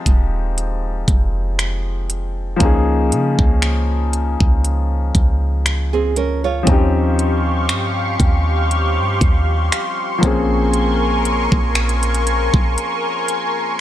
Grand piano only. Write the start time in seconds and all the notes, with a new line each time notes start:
Already playing: F3 G#3 C4 D#4 G4
2.56 F3 A#3
2.61 C#4 D#4
2.65 G#4
6.63 F3 C4
6.67 C#4 D#4
6.72 G4
10.19 F3 A#3
10.23 C4 C#4 G#4